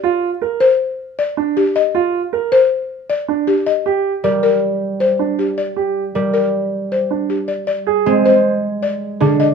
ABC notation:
X:1
M:5/4
L:1/8
Q:1/4=157
K:Gphr
V:1 name="Marimba"
z3 c z2 d z G e | z3 c z2 d z G e | z2 d B z2 c z G d | z2 d B z2 c z G d |
[K:Ablyd] d z e c z2 d z A e |]
V:2 name="Grand piano"
F z B z4 D z2 | F z B z4 D z2 | G z B z4 D z2 | G z B z4 D z2 |
[K:Ablyd] z A C c z4 D z |]
V:3 name="Harp" clef=bass
z8 z2 | z8 z2 | z2 G,8- | G,2 G,8 |
[K:Ablyd] z2 A,6 D,2 |]